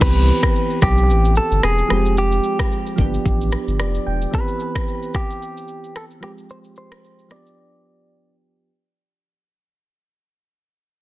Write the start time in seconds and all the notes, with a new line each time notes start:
0.00 C2 E3 B3 C4 G4 B4, kick, crash, shaker
0.16 shaker
0.27 shaker
0.43 kick, cross-stick, shaker
0.56 shaker
0.70 shaker
0.82 B1 G4, kick, cross-stick, shaker
0.98 shaker
1.09 A1, shaker
1.25 shaker
1.36 A4, shaker
1.51 G1, shaker
1.63 E1 G#4, cross-stick, shaker
1.78 shaker
1.88 F1 F3 G#3 C4, cross-stick
1.93 G4
2.06 shaker
2.17 G4, shaker
2.32 shaker
2.44 shaker
2.59 kick, cross-stick, shaker
2.72 shaker
2.87 shaker
2.96 G1 F3 A#3 D4, kick, shaker
3.01 B3 G4
3.14 shaker
3.26 A1, kick, shaker
3.41 shaker
3.52 cross-stick, shaker
3.67 G1, shaker
3.80 F1 D5, cross-stick, shaker
3.94 shaker
4.07 E1 G5
4.22 shaker
4.31 E3 B3 C4 B4, kick, shaker
4.36 G4
4.48 shaker
4.60 shaker
4.75 kick, cross-stick, shaker
4.88 shaker
5.03 shaker
5.14 G4, kick, cross-stick, shaker
5.30 shaker
5.42 shaker
5.57 shaker
5.68 shaker
5.84 shaker
5.96 A4, cross-stick, shaker
6.11 shaker
6.20 F3 G#3 C4 G4, cross-stick
6.25 G4
6.38 shaker
6.50 C5, shaker
6.64 shaker
6.76 C5, shaker
6.92 cross-stick, shaker
7.04 shaker
7.19 shaker
7.28 F3 B3 D4 D5, cross-stick, shaker
7.33 G4
7.46 shaker